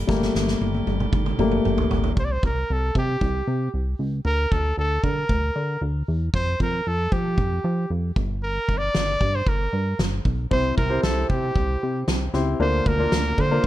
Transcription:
Already playing: tonewheel organ A#2 D3 G3 G4 A4, grand piano G3 A3 A#3
0.07 analog synth bass G1, grand piano G3 A3 A#3, kick, snare
0.22 snare
0.35 analog synth bass G1, snare
0.48 snare
0.61 analog synth bass G1, high tom
0.74 high tom
0.87 analog synth bass G1, high tom
1.00 mid tom
1.12 analog synth bass G1, kick, mid tom
1.26 mid tom
1.39 analog synth bass G1, grand piano G3 A3 A#3, mid tom
1.51 mid tom
1.65 analog synth bass G1, mid tom
1.78 floor tom
1.91 analog synth bass G1, floor tom
2.04 floor tom
2.17 analog synth bass C2, trumpet C5, kick
2.25 trumpet D5
2.32 trumpet C5
2.43 analog synth bass C2, trumpet A#4, kick
2.70 analog synth bass C2, trumpet A4
2.95 analog synth bass C3, trumpet G4, kick
3.21 analog synth bass C2, kick
3.48 analog synth bass C3
3.74 analog synth bass C2
3.99 analog synth bass C#2
4.25 analog synth bass D2, trumpet A#4
4.51 analog synth bass D2, trumpet A4, kick
4.78 analog synth bass D2, trumpet A4
5.04 analog synth bass D3, trumpet A#4, kick
5.29 analog synth bass D2, kick
5.56 analog synth bass D3
5.81 analog synth bass D2
6.08 analog synth bass E2
6.34 analog synth bass F2, trumpet C5, kick
6.60 analog synth bass F2, trumpet A#4, kick
6.87 analog synth bass F2, trumpet A4
7.12 analog synth bass F3, trumpet G4, kick
7.38 analog synth bass F2, kick
7.64 analog synth bass F3
7.90 analog synth bass F2
8.16 analog synth bass G1, kick
8.43 trumpet A#4
8.68 analog synth bass G1, kick
8.78 trumpet D5
8.95 analog synth bass G1, snare
9.21 analog synth bass G2, kick
9.35 trumpet C5
9.46 analog synth bass G1, trumpet A#4, kick
9.73 analog synth bass G2
9.99 analog synth bass G1, snare
10.25 analog synth bass B1, kick
10.51 analog synth bass C2, grand piano C3 C4 E4 G4 C5, trumpet C5, kick
10.77 analog synth bass C2, trumpet A#4, kick
10.89 grand piano C4 E4 G4 C5
11.03 analog synth bass C2, trumpet A4, snare
11.29 analog synth bass C3, trumpet G4, kick
11.55 analog synth bass C2, kick
11.83 analog synth bass C3
12.08 analog synth bass C2, snare
12.34 analog synth bass C#2, grand piano C4 E4 G4 C5, snare
12.60 analog synth bass D2, grand piano D3 A#3 D4 F4 A#4, trumpet C5
12.86 analog synth bass D2, trumpet A#4, kick
12.99 grand piano A#3 D4 F4 A#4
13.12 analog synth bass D2, snare
13.38 analog synth bass D3, trumpet C5, kick
13.51 grand piano A#3 D4 F4 A#4
13.64 analog synth bass D2, kick

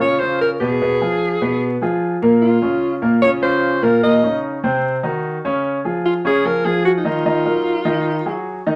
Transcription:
0.00 grand piano C#3 C#4 F4, alto saxophone C#5
0.20 grand piano C#3 C#4 F4, alto saxophone C5
0.41 alto saxophone A#4
0.60 grand piano B2 B3 B4, alto saxophone G#4
0.81 grand piano B2 B3 B4
1.01 grand piano F3 F4 G#4
1.41 grand piano B2 B3 B4
1.81 grand piano F3 F4 G#4
2.22 grand piano A#2 A#3 A#4
2.42 alto saxophone F4
2.62 grand piano C#3 C#4 F4
3.02 grand piano A#2 A#3 A#4
3.22 grand piano C#3 C#4 F4, alto saxophone C#5
3.42 grand piano C#3 C#4 F4, alto saxophone C5
3.82 grand piano A#2 A#3 A#4, alto saxophone A#4
4.03 grand piano A#2 A#3 A#4, alto saxophone D#5
4.23 grand piano C#3 C#4 D#4
4.63 grand piano C3 C4 C5
5.03 grand piano D#3 D#4 F#4
5.45 grand piano C#3 C#4 C#5
5.85 grand piano F3 F4 G#4
6.06 alto saxophone F4
6.25 grand piano C#3 C#4 C#5, alto saxophone G#4
6.45 grand piano F3 F4 G#4, alto saxophone A#4
6.65 grand piano F3 F4 G#4, alto saxophone G#4
6.85 alto saxophone F#4
6.97 alto saxophone D#4
7.05 grand piano D#3 D#4 D#5, alto saxophone F4
7.25 grand piano D#3 D#4 D#5
7.45 grand piano F#3 D#4 A#4
7.85 grand piano D#3 D#4 D#5
8.25 grand piano F#3 F#4 G#4
8.66 grand piano D#3 D#4 D#5

